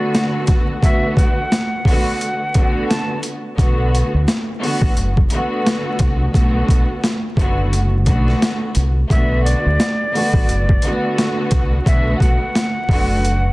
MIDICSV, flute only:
0, 0, Header, 1, 2, 480
1, 0, Start_track
1, 0, Key_signature, 2, "minor"
1, 0, Tempo, 689655
1, 575, Time_signature, 4, 2, 24, 8
1, 9416, End_track
2, 0, Start_track
2, 0, Title_t, "Flute"
2, 0, Program_c, 0, 73
2, 0, Note_on_c, 0, 74, 96
2, 208, Note_off_c, 0, 74, 0
2, 577, Note_on_c, 0, 76, 108
2, 792, Note_off_c, 0, 76, 0
2, 809, Note_on_c, 0, 78, 92
2, 1984, Note_off_c, 0, 78, 0
2, 2003, Note_on_c, 0, 81, 78
2, 2225, Note_off_c, 0, 81, 0
2, 6337, Note_on_c, 0, 76, 104
2, 6552, Note_off_c, 0, 76, 0
2, 6572, Note_on_c, 0, 74, 98
2, 7890, Note_off_c, 0, 74, 0
2, 8257, Note_on_c, 0, 76, 110
2, 8472, Note_off_c, 0, 76, 0
2, 8490, Note_on_c, 0, 78, 96
2, 9416, Note_off_c, 0, 78, 0
2, 9416, End_track
0, 0, End_of_file